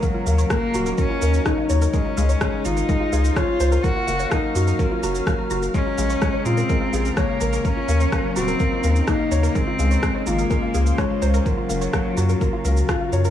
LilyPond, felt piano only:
\new Staff \with { instrumentName = "Felt piano" } { \time 4/4 \key ees \dorian \tempo 4 = 126 bes8 bes8 bes8 ges'8 bes8 bes'8 ees'8 des''8 | aes8 aes8 aes8 f'8 aes8 aes'8 des'8 c''8 | bes8 bes8 bes8 ges'8 bes8 ges'8 bes8 ges'8 | aes8 aes8 aes8 f'8 aes8 aes'8 des'8 bes'8 |
bes8 bes8 bes8 ges'8 bes8 bes'8 ees'8 des''8 | aes8 aes8 aes8 f'8 aes8 aes'8 des'8 c''8 | bes8 bes8 bes8 ges'8 bes8 bes'8 f'8 des''8 | }